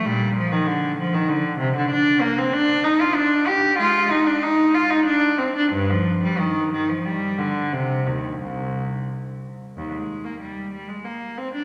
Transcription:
0.06 A#2 G3
0.36 F3
0.52 D#3
0.67 D3
0.99 F3
1.14 D#3
1.28 D3
1.59 C3
1.77 D3
1.90 D4
2.21 A#3
2.38 C4
2.53 D4
2.84 D#4
3.01 F4
3.15 D4
3.47 G4
3.78 G#3 F4
4.11 D#4
4.27 D4
4.43 D#4
4.74 F4
4.90 D#4
5.05 D4
5.38 C4
5.57 D4
5.72 G2
5.90 F3
6.23 G3
6.39 D#3
6.72 D#3
6.89 F3
7.05 G3
7.39 D3
7.72 C3
8.06 D#2
8.41 C2
9.77 D#2
9.92 G#3
10.25 A#3
10.41 G3
10.74 G3
10.89 G#3
11.05 A#3
11.38 C4
11.55 D4

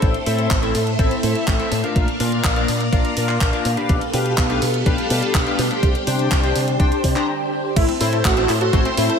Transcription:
Already playing: C4 E4 A4 C5 E5
0.02 A1 A3 A4 E5, kick, closed hi-hat
0.14 closed hi-hat
0.26 A2 C4 E4 A4 E5, open hi-hat
0.39 closed hi-hat
0.51 A1, kick, clap, closed hi-hat
0.63 C4 E4 A4 E5, closed hi-hat
0.75 A2, open hi-hat
0.87 closed hi-hat
0.99 A1 C4 E4 A4 E5, kick, closed hi-hat
1.11 closed hi-hat
1.23 A2 C4 E4 A4 E5, open hi-hat
1.35 closed hi-hat
1.47 A1, kick, clap, closed hi-hat
1.59 C4 E4 A4 E5, closed hi-hat
1.72 A2, open hi-hat
1.84 D4 F4 A#4 F5, closed hi-hat
1.96 A#1 A#3 A#4 D5 F5, kick, closed hi-hat
2.08 closed hi-hat
2.20 A#2 D4 F4 A#4 F5, open hi-hat
2.32 closed hi-hat
2.44 A#1, kick, clap, closed hi-hat
2.56 D4 F4 A#4 F5, closed hi-hat
2.68 A#2, open hi-hat
2.81 closed hi-hat
2.92 A#1 D4 F4 A#4 F5, kick, closed hi-hat
3.05 closed hi-hat
3.17 A#2 D4 F4 A#4 F5, open hi-hat
3.29 clap, closed hi-hat
3.41 A#1, kick, clap, closed hi-hat
3.53 D4 F4 A#4 F5, closed hi-hat
3.65 A#2, open hi-hat
3.77 D4 G4 B4 F5, closed hi-hat
3.89 B1 B3 G4 A4, kick, closed hi-hat
4.01 closed hi-hat
4.13 B2 D4 G4 B4 F5, open hi-hat
4.26 closed hi-hat
4.38 B1, kick, clap, closed hi-hat
4.50 D4 G4 B4 F5, closed hi-hat
4.62 B2, open hi-hat
4.74 closed hi-hat
4.86 B1 D4 G4 B4 F5, kick, closed hi-hat
4.98 closed hi-hat
5.10 B2 D4 G4 B4 F5, open hi-hat
5.22 closed hi-hat
5.35 B1, kick, clap, closed hi-hat
5.47 D4 G4 B4 F5, closed hi-hat
5.59 B2, open hi-hat
5.71 D4 G4 C5 G5, closed hi-hat
5.83 C2 D4 C5, kick, closed hi-hat
5.95 closed hi-hat
6.07 C3 D4 G4 C5 G5, open hi-hat
6.19 closed hi-hat
6.31 C2, kick, clap, closed hi-hat
6.43 D4 G4 C5 G5, closed hi-hat
6.55 C3, open hi-hat
6.68 closed hi-hat
6.80 C2 D4 G4 C5 G5, kick, closed hi-hat
6.92 closed hi-hat
7.04 C3, kick, open hi-hat
7.16 D4 G4 C5 A#5, clap, closed hi-hat
7.76 A1 A3 E4 C5 E5 A5 E6, kick, closed hi-hat, crash
7.89 C4, closed hi-hat
8.01 A2 A3 C4 E4 C5, open hi-hat
8.13 A4, closed hi-hat
8.25 A1 A3 F#4, kick, clap, closed hi-hat
8.37 A3 C4 E4 C5, closed hi-hat
8.49 A2 E4, clap, open hi-hat
8.61 F#4 A4, closed hi-hat
8.73 A1 A3 C4 E4 C5, kick, closed hi-hat
8.85 C4, closed hi-hat
8.97 A2 A3 C4 E4 C5, open hi-hat
9.10 A4, closed hi-hat

